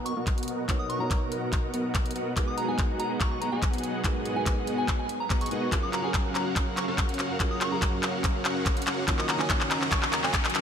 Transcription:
Already playing: felt piano B2 B3 D#4 A#4 C#5, ambient pad B2 F#3 D#4 A#4, supersaw synth B3 F#4 A#4 D#5 F#5
0.05 synth bell C#6, closed hi-hat
0.17 supersaw synth B3 F#4 A#4 D#5 F#5
0.27 kick, clap, closed hi-hat
0.38 closed hi-hat
0.43 closed hi-hat
0.48 closed hi-hat
0.68 felt piano B2 B3 D#4 A#4 C#5, supersaw synth B3 F#4 F#5, kick, clap, closed hi-hat
0.79 synth bell D#6
0.89 synth bell C#6, closed hi-hat
0.99 felt piano B2 B3 D#4 A#4 C#5, synth bell A#5
1.10 synth bell A#5, kick, clap, closed hi-hat
1.32 closed hi-hat
1.53 kick, clap, closed hi-hat
1.74 supersaw synth B3 F#4 A#4 D#5 F#5, closed hi-hat
1.95 kick, clap, closed hi-hat
2.06 closed hi-hat
2.11 closed hi-hat
2.16 supersaw synth B3 F#4 A#4 D#5 F#5, closed hi-hat
2.36 ambient pad G#2 B3 G#4, felt piano G#3 D#4 F#4 A#4 B4, supersaw synth G#4, kick, clap, closed hi-hat
2.48 synth bell D#6
2.58 synth bell A#5, closed hi-hat
2.67 felt piano G#3 D#4 F#4 A#4 B4, synth bell G#5
2.79 kick, clap, closed hi-hat
3.00 synth bell A#5, closed hi-hat
3.20 synth bell C#6, kick, clap, closed hi-hat
3.31 synth bell C#6
3.41 synth bell A#5, closed hi-hat
3.52 supersaw synth B3 F#4 G#4 D#5 F#5, synth bell G#5
3.63 kick, clap, closed hi-hat
3.73 closed hi-hat
3.78 closed hi-hat
3.83 closed hi-hat
4.03 felt piano G#3 D#4 F#4 A#4 B4, kick, clap, closed hi-hat
4.25 closed hi-hat
4.34 felt piano G#3 D#4 F#4 A#4, synth bell G#5
4.38 felt piano B4
4.46 synth bell G#5, kick, clap, closed hi-hat
4.67 closed hi-hat
4.78 synth bell G#5
4.88 kick, clap, closed hi-hat
4.99 synth bell G#5
5.09 closed hi-hat
5.20 synth bell A#5
5.30 supersaw synth B3 F#4 G#4 D#5 F#5, synth bell A#5, kick, clap, closed hi-hat
5.41 synth bell C#6, closed hi-hat
5.46 closed hi-hat
5.50 felt piano G#3 D#4 F#4 A#4 B4, supersaw synth B3 F#4 G#4 D#5 F#5, closed hi-hat
5.71 ambient pad F#2 A#3, felt piano F#3 F4 G#4, kick, clap, closed hi-hat, riser
5.83 synth bell D#6
5.93 synth bell A#5, clap, closed hi-hat
6.02 felt piano F#3 C#4 G#4, synth bell G#5
6.06 felt piano A#4
6.14 kick, clap, closed hi-hat
6.35 synth bell A#5, clap, closed hi-hat
6.56 kick, clap, closed hi-hat
6.77 synth bell C#6, clap, closed hi-hat
6.88 supersaw synth C#4 F#4 A#4 F5 F#5
6.98 kick, clap, closed hi-hat
7.09 closed hi-hat
7.14 closed hi-hat
7.19 clap, closed hi-hat
7.39 felt piano F#3 C#4 F4 G#4 A#4, kick, clap, closed hi-hat
7.51 synth bell D#6
7.61 synth bell C#6, clap, closed hi-hat
7.70 felt piano F#3 C#4 G#4 A#4, synth bell A#5
7.82 kick, clap, closed hi-hat
8.03 clap, closed hi-hat
8.24 kick, clap, closed hi-hat
8.45 supersaw synth C#4 F#4 A#4 F5 F#5, clap, closed hi-hat
8.66 kick, clap, closed hi-hat
8.77 closed hi-hat
8.82 closed hi-hat
8.87 supersaw synth C#4 F#4 A#4 F5 F#5, clap, closed hi-hat
9.07 ambient pad D#2 D#3 F#3 C#4, felt piano D#3 A#3 F4 F#4 C#5, kick, clap, closed hi-hat
9.19 synth bell D#6, clap
9.29 synth bell A#5, clap, closed hi-hat
9.38 felt piano D#3 A#3 F#4 C#5, synth bell G#5, clap
9.50 kick, clap, closed hi-hat
9.61 clap
9.71 synth bell A#5, clap, closed hi-hat
9.82 clap
9.92 synth bell C#6, kick, clap, closed hi-hat
10.03 synth bell C#6, clap
10.13 synth bell A#5, clap, closed hi-hat
10.24 supersaw synth C#4 F#4 A#4 D#5 F#5, synth bell G#5, clap
10.34 kick, clap, closed hi-hat
10.45 clap, closed hi-hat
10.50 closed hi-hat
10.55 clap, closed hi-hat

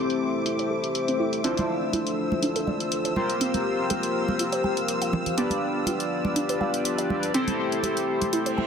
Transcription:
Already playing: analog synth pad A3 E4 G4 C5 E5, analog polysynth C4 E4 G4 A4 C5, string machine D6
0.10 closed hi-hat
0.46 synth pluck E4, closed hi-hat
0.59 synth pluck C5, closed hi-hat
0.71 synth pluck G4
0.84 closed hi-hat
0.95 closed hi-hat
1.08 synth pluck C4, closed hi-hat
1.20 synth pluck E4
1.33 closed hi-hat
1.44 analog synth pad F3 D4 C5, synth pluck C4, analog polysynth D4 E4 F4 A4 C5, string machine E6, closed hi-hat
1.57 closed hi-hat, high conga
1.93 synth pluck E4, closed hi-hat, high conga
2.07 closed hi-hat
2.32 high conga
2.43 synth pluck D4, closed hi-hat
2.56 synth pluck A4, closed hi-hat
2.67 synth pluck D5, high conga
2.80 closed hi-hat
2.92 closed hi-hat
3.05 synth pluck C5, closed hi-hat
3.16 analog synth pad A#3 G4 F5, analog polysynth C4 F4 G4 A#4 C5, high conga
3.30 closed hi-hat
3.41 synth pluck C4, closed hi-hat
3.54 closed hi-hat, high conga
3.90 synth pluck G4, closed hi-hat, high conga
4.03 closed hi-hat
4.28 high conga
4.39 synth pluck F4, closed hi-hat
4.52 synth pluck C5, closed hi-hat
4.64 synth pluck G5, high conga
4.77 closed hi-hat
4.88 closed hi-hat
5.02 synth pluck F5, closed hi-hat
5.13 high conga, low conga
5.26 closed hi-hat, low conga
5.37 synth pluck B3, analog synth pad B3 D5, analog polysynth D4 F4 G4 B4 D5, closed hi-hat
5.50 closed hi-hat, high conga
5.86 synth pluck F4, closed hi-hat, high conga
6.00 closed hi-hat
6.25 high conga
6.36 synth pluck D4, closed hi-hat
6.49 synth pluck B4, closed hi-hat
6.61 synth pluck F5, high conga
6.74 closed hi-hat
6.85 closed hi-hat
6.98 synth pluck D5, closed hi-hat
7.10 high conga
7.23 closed hi-hat
7.34 analog synth pad A3 E4 C5 E5, analog polysynth C4 E4 G4 A4 C5, synth pluck C4, closed hi-hat
7.47 closed hi-hat, high conga
7.72 closed hi-hat
7.83 synth pluck G4, closed hi-hat, high conga
7.97 closed hi-hat
8.22 closed hi-hat, high conga
8.33 synth pluck E4, closed hi-hat, reverse cymbal
8.46 synth pluck C5, closed hi-hat
8.57 synth pluck G5, high conga

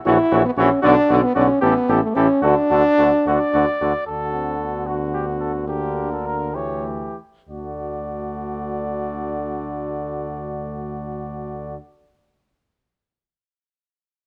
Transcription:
0.05 bass trombone A#1, trombone E3, french horn E4, flugelhorn F#4, trumpet C#5
0.31 bass trombone A#1, trombone E3, flugelhorn F#4, trumpet C#5
0.46 french horn B3
0.57 bass trombone A#1, trombone E3, french horn C#4, flugelhorn F#4, trumpet C#5
0.82 bass trombone B1, trombone D3, french horn D4, flugelhorn F#4, trumpet D5
1.09 bass trombone B1, trombone D3, flugelhorn F#4, trumpet D5
1.23 french horn B3
1.35 bass trombone B1, trombone D3, french horn C#4, flugelhorn F#4, trumpet D5
1.61 bass trombone A1, trombone E3, french horn B3, flugelhorn G4, trumpet A4
1.88 bass trombone A1, trombone E3, flugelhorn G4, trumpet A4
2.03 french horn A3
2.15 bass trombone A1, trombone E3, french horn C#4, flugelhorn G4, trumpet A4
2.42 bass trombone D2, trombone D3, french horn D4, flugelhorn F#4, trumpet A4
2.70 bass trombone D2, trombone D3, flugelhorn F#4, trumpet A4
2.98 bass trombone D2, trombone D3, flugelhorn F#4, trumpet A4
3.26 bass trombone D2, trombone D3, flugelhorn F#4, trumpet D5
3.54 bass trombone D2, trombone D3, flugelhorn F#4
3.81 bass trombone D2, trombone D3, flugelhorn F#4
4.07 bass trombone D2, trombone D3, french horn D4, flugelhorn F#4, trumpet A4
4.33 french horn C4
4.59 french horn B3
4.86 flugelhorn F#4, trumpet F#4
5.13 flugelhorn G4
5.40 flugelhorn A4
5.67 trombone D3, french horn A#3, trumpet G4, flugelhorn A#4
6.12 trumpet A4
6.25 trumpet A#4
6.54 trombone E3, french horn A3, flugelhorn G4, trumpet C#5
7.49 bass trombone D2, trombone D3, french horn A3, flugelhorn F#4, trumpet D5

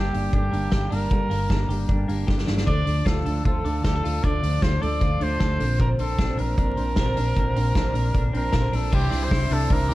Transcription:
Already playing: steel-string acoustic guitar G2 D3 G3 A#3 D4, clean electric guitar G2 A#3 G4, trumpet G4
0.13 fingered electric bass G1, steel-string acoustic guitar G3 A#3 D4, clean electric guitar G4, open hi-hat
0.33 fingered electric bass G1, steel-string acoustic guitar D3 G3 A#3 D4, trumpet G4, kick, closed hi-hat
0.53 fingered electric bass G1, steel-string acoustic guitar G3 A#3 D4, open hi-hat
0.71 fingered electric bass G1, steel-string acoustic guitar G2 D3 G3 A#3 D4, clean electric guitar G4, kick, snare, closed hi-hat
0.91 fingered electric bass G1, steel-string acoustic guitar G3 A#3 D4, trumpet A#4, open hi-hat
1.11 fingered electric bass G1, steel-string acoustic guitar G2 D3 G3 A#3 D4, kick, closed hi-hat
1.30 fingered electric bass G1, steel-string acoustic guitar G3 A#3 D4, open hi-hat
1.50 fingered electric bass G1, steel-string acoustic guitar G2 D3 G3 A#3 D4, kick, snare, closed hi-hat
1.69 fingered electric bass G1, steel-string acoustic guitar G3 A#3 D4, clean electric guitar G4, open hi-hat
1.88 fingered electric bass G1, steel-string acoustic guitar D3 G3 A#3 D4, kick, closed hi-hat
2.07 fingered electric bass G1, steel-string acoustic guitar G3 A#3 D4, open hi-hat
2.26 fingered electric bass G1, steel-string acoustic guitar G2 D3 G3 A#3 D4, clean electric guitar G4, kick, snare
2.38 snare
2.46 fingered electric bass G1, steel-string acoustic guitar G3 A#3 D4, snare
2.58 snare
2.66 fingered electric bass D2, steel-string acoustic guitar D3 F3 A3 D4, trumpet D5, kick, closed hi-hat
2.86 fingered electric bass D2, steel-string acoustic guitar F3 A3 D4, open hi-hat
3.05 fingered electric bass D2, steel-string acoustic guitar D3 F3 A3 D4, clean electric guitar F4, trumpet A4, kick, snare, closed hi-hat
3.26 fingered electric bass D2, steel-string acoustic guitar F3 A3 D4, clean electric guitar A4, open hi-hat
3.45 fingered electric bass D2, steel-string acoustic guitar D3 F3 A3 D4, clean electric guitar F4, trumpet A4, kick, closed hi-hat
3.65 fingered electric bass D2, steel-string acoustic guitar F3 A3 D4, open hi-hat
3.84 fingered electric bass D2, steel-string acoustic guitar D3 F3 A3 D4, clean electric guitar G4, trumpet A4, kick, snare, closed hi-hat
3.96 clean electric guitar A4
4.04 fingered electric bass D2, steel-string acoustic guitar F3 A3 D4, clean electric guitar F4, open hi-hat
4.24 fingered electric bass D2, steel-string acoustic guitar D3 F3 A3 D4, trumpet D5, kick, closed hi-hat
4.43 fingered electric bass D2, steel-string acoustic guitar F3 A3 D4, open hi-hat
4.62 steel-string acoustic guitar D3 F3 A3 D4, clean electric guitar F4, trumpet C5, kick, snare, closed hi-hat
4.82 fingered electric bass D2, steel-string acoustic guitar F3 A3 D4, clean electric guitar A4, trumpet D5, open hi-hat
5.00 fingered electric bass D2, steel-string acoustic guitar D3 F3 A3 D4, clean electric guitar F4, kick, closed hi-hat
5.21 fingered electric bass D2, steel-string acoustic guitar F3 A3 D4, trumpet C5, open hi-hat
5.40 fingered electric bass D2, steel-string acoustic guitar D3 F3 A3 D4, clean electric guitar A4, kick, snare, closed hi-hat
5.59 fingered electric bass A#1, clean electric guitar A#2, steel-string acoustic guitar F3 C4 D4, open hi-hat
5.79 steel-string acoustic guitar A#2 D3 F3 C4 D4, trumpet A#4, kick, closed hi-hat
5.99 fingered electric bass A#1, steel-string acoustic guitar F3 C4 D4, trumpet A4, open hi-hat
6.19 fingered electric bass A#1, steel-string acoustic guitar A#2 D3 F3 C4 D4, kick, snare, closed hi-hat
6.38 fingered electric bass A#1, steel-string acoustic guitar F3 C4 D4, clean electric guitar A#4, trumpet A#4, open hi-hat
6.57 fingered electric bass A#1, steel-string acoustic guitar D3 F3 C4 D4, kick, closed hi-hat
6.77 fingered electric bass A#1, steel-string acoustic guitar F3 C4 D4, open hi-hat
6.96 fingered electric bass A#1, steel-string acoustic guitar A#2 D3 F3 C4 D4, clean electric guitar A#4, kick, snare, closed hi-hat
7.17 fingered electric bass A#1, steel-string acoustic guitar F3 C4 D4, open hi-hat
7.36 fingered electric bass A#1, steel-string acoustic guitar A#2 D3 F3 C4 D4, kick, closed hi-hat
7.56 fingered electric bass A#1, steel-string acoustic guitar F3 C4 D4, open hi-hat
7.75 steel-string acoustic guitar A#2 D3 F3 C4 D4, kick, snare, closed hi-hat
7.93 fingered electric bass A#1, steel-string acoustic guitar F3 C4 D4, clean electric guitar A#4, open hi-hat
8.12 steel-string acoustic guitar D3 F3 C4 D4, kick, closed hi-hat
8.33 fingered electric bass A#1, steel-string acoustic guitar F3 C4 D4, trumpet A#4, open hi-hat
8.52 fingered electric bass A#1, steel-string acoustic guitar A#2 D3 F3 C4 D4, clean electric guitar A#4, kick, snare, closed hi-hat
8.73 fingered electric bass A#1, steel-string acoustic guitar F3 C4 D4, trumpet A4, open hi-hat
8.92 fingered electric bass C2, steel-string acoustic guitar C3 E3 G3 D4 E4, transistor combo organ D4 E4 C5, trumpet G4, kick, crash
9.11 fingered electric bass C2, steel-string acoustic guitar G3 D4 E4, hi-hat pedal, open hi-hat
9.24 trumpet C5
9.30 fingered electric bass C2, steel-string acoustic guitar E3 G3 D4, clean electric guitar E4, kick, snare, hi-hat pedal, open hi-hat
9.50 fingered electric bass C2, steel-string acoustic guitar G3 D4 E4, trumpet A4, hi-hat pedal, open hi-hat
9.70 fingered electric bass C2, steel-string acoustic guitar C3 E3 G3 D4 E4, trumpet A#4, kick, hi-hat pedal, open hi-hat
9.80 clean electric guitar E4
9.89 fingered electric bass D2, steel-string acoustic guitar E4, clean electric guitar G4, hi-hat pedal, open hi-hat

